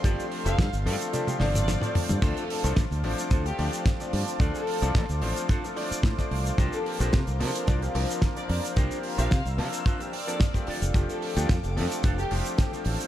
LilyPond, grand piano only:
\new Staff \with { instrumentName = "Grand piano" } { \time 4/4 \key d \minor \tempo 4 = 110 <f a c' d' g'>8. <f a c' d' g'>16 r8 <f a c' d' a'>8. <f a c' d' g'>16 <f a c' d' c''>8. <f a c' d' c''>8. | <f a c' d' a'>8. <f a c' d' a'>16 r8 <f a c' d' c''>8. <f a c' d' a'>16 <f a c' d' d''>8. <f a c' d' d''>8. | <f a c' d' a'>8. <f a c' d' a'>16 r8 <f a c' d' c''>8. <f a c' d' a'>16 <f a c' d' d''>8. <f a c' d' d''>8. | <f bes c' d' g'>8. <f bes c' d' g'>16 r8 <f bes c' d' a''>8. <f bes c' d' g'>16 <f bes c' d' bes'>8. <f bes c' d' bes'>8. |
<f bes c' d' g'>8. <f bes c' d' g'>16 r8 <f bes c' d' a''>8. <f bes c' d' g'>16 r16 <f bes c' d' a'>16 r16 <f a c' d' g'>8 r16 | <f a c' d' g'>8. <f a c' d' g'>16 r8 <f a c' d' a'>8. <f a c' d' g'>16 <f a c' d' c''>8. <f a c' d' c''>8. | }